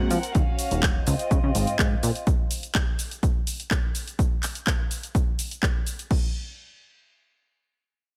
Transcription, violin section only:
0.00 0.34 C4 medium
0.00 0.34 A#4 medium
0.00 0.34 F#5 medium
0.34 1.06 C#4 medium
0.34 1.06 F#4 medium
0.34 1.06 F5 medium
1.07 2.26 C4 medium
1.07 2.26 F4 medium
1.07 2.26 D#5 medium

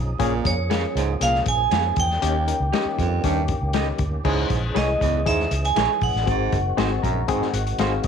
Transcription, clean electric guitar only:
0.70 0.82 G#4 medium
0.70 0.82 C#5 medium
0.70 0.82 F5 medium
1.71 1.83 G#4 medium
1.71 1.83 C#5 medium
1.71 1.84 F5 medium
2.72 2.84 G4 medium
2.72 2.85 C#5 medium
2.72 2.85 D#5 medium
3.74 3.86 G4 medium
3.74 3.86 C#5 medium
3.74 3.86 D#5 medium
4.75 4.87 E4 medium
4.75 4.87 G#4 medium
4.75 4.87 C#5 medium
5.77 5.88 E4 medium
5.77 5.89 G#4 medium
5.77 5.89 C#5 medium
6.77 6.89 D#4 medium
6.77 6.90 F#4 medium
6.77 6.90 C5 medium
7.79 7.91 D#4 medium
7.79 7.91 F#4 medium
7.79 7.91 C5 medium

